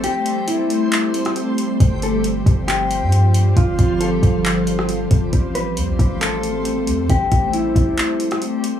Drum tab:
HH |x-x-x-x-x-xxx-x-|x-x-x-x-x-x-x-x-|x-x-x-x-x-x-x-x-|x-x-x-x-x-x-x-x-|
CP |--------x-------|--------x-------|--------x-------|--------x-------|
SD |-----------r----|----------------|-----------r----|----------------|
BD |----------------|o-----o---------|o-o---o-------o-|o-----o---------|

HH |x-x-x-x-x-xxx-x-|
CP |--------x-------|
SD |-----------r----|
BD |o-o---o---------|